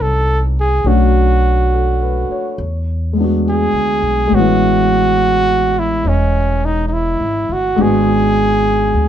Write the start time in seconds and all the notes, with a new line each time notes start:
Already playing: C2 E3 B3 C#4 D#4 F#4 B4
0.02 A4
0.60 G#4
0.84 B1 A3 C#4 D4 F#4
1.74 A4
2.03 B4
2.29 C#5, muted upright bass stroke
2.58 E2
3.13 G#3
3.17 B3 D4
3.24 F#4
3.49 G#4
3.73 D2
4.03 B1
4.27 G#3 B3
4.32 A1 C#4 F#4
4.38 E3
5.79 E4
6.04 E1 C#4 D#5
6.08 C#4
6.65 D#4
6.88 D#4
6.93 E4
7.20 G#1
7.49 G1 F#4
7.76 G#1 G#3 B3 D4
7.81 F#4 G#4
8.94 D2